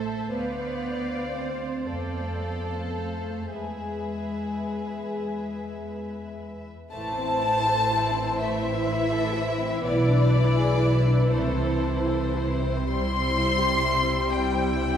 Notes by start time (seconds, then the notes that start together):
Already playing: A1 A3 A4 C5 E5
0.31 D2 B3 B4 C5 D5 F5
1.33 C4 C5
1.85 F2 A3 A4 C5 D5 F5
1.94 B3
2.05 A3
2.12 B3
2.21 A3
2.32 B3
2.41 A3
2.49 B3
2.58 A3
2.66 B3 C5
2.75 A3
2.84 B3
2.95 A3
3.52 E2 G#3 G#4 B4 E5
6.92 A1 A2 E3 A3 E4 C5 A5
7.17 C4
7.42 E4
7.67 A4
7.92 E4
8.14 C4
8.40 A3 E5
8.63 C4
8.88 E4
9.12 A4
9.35 E4
9.61 C4
9.84 B1 B2 B3 B4 D5
10.07 D4
10.34 E4
10.57 G#4
10.82 E4
11.06 D4
11.30 C2 C3 A3 A4 C5
11.55 C4
11.81 E4
12.08 A4
12.36 E4
12.63 C4
12.89 G3 E4 C5 C6
13.15 C4
13.36 E4
13.59 G4
13.83 E4
14.06 C4
14.31 G3 G5
14.54 C4
14.77 E4